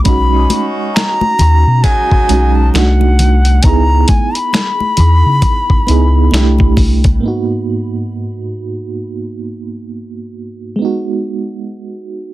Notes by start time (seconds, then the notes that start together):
0.04 B1 G#3 C#4 D#4 B5, kick, closed hi-hat, muted conga
0.09 F#4
0.32 C#4 D#4 G#4
0.50 C#4 D#4 F#4, closed hi-hat, high conga
0.94 A#5, finger snap, snare, closed hi-hat
1.21 muted conga, high conga
1.39 D#2, closed hi-hat, low conga
1.67 B2
1.83 F#3 G#3 D#4 G#5, kick, closed hi-hat
2.11 kick
2.29 B1 G#3 C#4 D#4, closed hi-hat, high conga
2.33 F#4
2.55 A5
2.73 C2 A3 D4 F#5, finger snap, snare, closed hi-hat, muted conga
2.77 D#4 F#4
3.01 high conga
3.19 closed hi-hat, low conga
3.45 closed hi-hat
3.63 C#2 B3 D#4 A#5, kick, closed hi-hat
3.67 E4 G#4
4.08 G#5, kick, closed hi-hat, high conga
4.35 B5, closed hi-hat
4.53 finger snap, snare, closed hi-hat, muted conga
4.80 high conga
4.97 E2, closed hi-hat, low conga
5.26 C#3
5.42 kick, closed hi-hat, low conga
5.70 kick
5.87 C#2 B3 D#4 E4, closed hi-hat, high conga
5.91 G#4
6.31 C2 A3 D4 E4, finger snap, snare, closed hi-hat, muted conga
6.36 G4
6.58 kick, high conga
6.77 kick, open hi-hat, low conga
7.04 kick, closed hi-hat
7.19 G#2 A#3
7.23 B3 D#4
7.28 F#4
10.76 G#3 B3
10.82 D#4 F#4